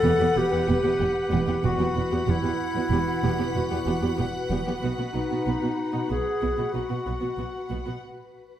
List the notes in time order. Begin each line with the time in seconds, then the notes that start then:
Already playing: A4 B4 F#5 B5
0.03 E1 E2 B3 G4
0.20 E2 B3 G4
0.35 E1 E2 B3 F#4 G4
0.51 E2 B3 G4
0.68 E1 E2 B3 G4
0.84 E2 B3 G4
0.99 E1 E2 B3 G4
1.31 E1 E2 B3 G4
1.47 E2 B3 G4
1.63 E1 E2 B3 F#4 G4 B4 F#5 B5
1.79 E2 B3 G4
1.96 E1 E2 B3 F#4
2.12 E2 B3 G4
2.27 E1 E2 B3 E4 G4
2.43 E2 B3 G4
2.75 E2 B3 F#4
2.90 E1 E2 B3 G4
3.23 E1 E2 B3 G4
3.39 E2 B3 G4
3.55 E1 E2 B3 F#4
3.70 E2 B3 G4
3.86 E1 E2 B3 G4
4.02 E2 B3 G4
4.17 E1 E2 B3 G4
4.50 E1 E2 B3 G4
4.67 E2 B3 G4
4.82 B1 B2 B3 F#4
4.97 B2 B3 F#4
5.13 B1 B2 B3 D#4
5.29 B2 B3 F#4
5.46 B1 B2 B3 F#4
5.61 B2 B3 F#4
5.93 B2 B3 D#4
6.08 B1 B2 B3 F#4 G#4
6.41 B1 B2 B3 F#4
6.58 B2 B3 F#4
6.73 B1 B2 B3 D#4 F#4
6.89 B2 B3 F#4
7.06 B1 B2 B3 F#4
7.21 B2 B3 F#4
7.38 B1 B2 B3 F#4
7.70 B1 B2 B3 F#4
7.85 B2 B3 F#4